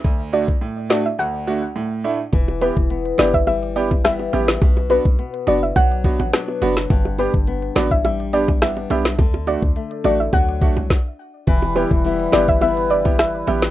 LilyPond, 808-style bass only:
\new Staff \with { instrumentName = "808-style bass" } { \clef bass \time 4/4 \key e \minor \tempo 4 = 105 r1 | e,,8. e,,8. g,,2 a,,8 | b,,8. b,,16 r8 fis,,8 b,,8. a,,16 r8 fis,,8 | g,,8. g,,8. a,,2 b,,8 |
d,8. d,16 r8 a,,8 d,8. c,16 r4 | e,,8. e,,8. g,,2 a,,8 | }